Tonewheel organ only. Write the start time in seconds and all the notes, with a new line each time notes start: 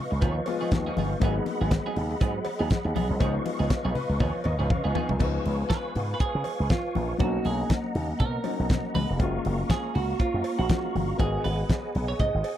Already playing: B4 D#5 F5 C#6
1.21 G#4 F#5 B5
3.20 B4 F5 C#6
5.19 B4 F5 G#5 C#6
7.19 A#3 D#5 F#5 A#5
9.20 F5 A#5 C#6
11.19 G#4 D#5 F#5 G#5